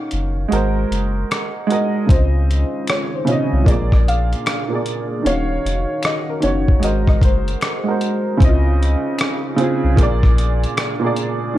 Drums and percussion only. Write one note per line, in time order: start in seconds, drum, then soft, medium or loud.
0.11 closed hi-hat medium
0.52 closed hi-hat medium
0.92 closed hi-hat medium
1.31 finger snap medium
1.31 cross-stick loud
1.31 closed hi-hat medium
1.70 closed hi-hat medium
2.09 kick loud
2.09 closed hi-hat medium
2.51 closed hi-hat medium
2.87 finger snap medium
2.87 cross-stick loud
2.87 closed hi-hat medium
3.27 closed hi-hat medium
3.66 kick medium
3.66 closed hi-hat loud
3.92 kick medium
3.92 cross-stick soft
4.08 closed hi-hat medium
4.33 closed hi-hat soft
4.46 finger snap medium
4.46 cross-stick loud
4.46 closed hi-hat medium
4.86 closed hi-hat medium
5.26 closed hi-hat medium
5.66 closed hi-hat medium
6.03 finger snap medium
6.03 cross-stick loud
6.03 closed hi-hat medium
6.42 closed hi-hat medium
6.68 kick medium
6.83 closed hi-hat medium
7.08 kick medium
7.08 cross-stick soft
7.22 kick medium
7.22 closed hi-hat medium
7.48 closed hi-hat soft
7.61 finger snap medium
7.61 cross-stick loud
7.61 closed hi-hat medium
8.01 closed hi-hat medium
8.40 kick loud
8.40 closed hi-hat medium
8.83 closed hi-hat medium
9.18 finger snap medium
9.18 cross-stick loud
9.18 closed hi-hat medium
9.58 closed hi-hat medium
9.97 kick medium
9.97 closed hi-hat loud
10.23 kick medium
10.23 cross-stick soft
10.38 closed hi-hat medium
10.64 closed hi-hat soft
10.77 finger snap medium
10.77 cross-stick loud
10.77 closed hi-hat medium
11.16 closed hi-hat medium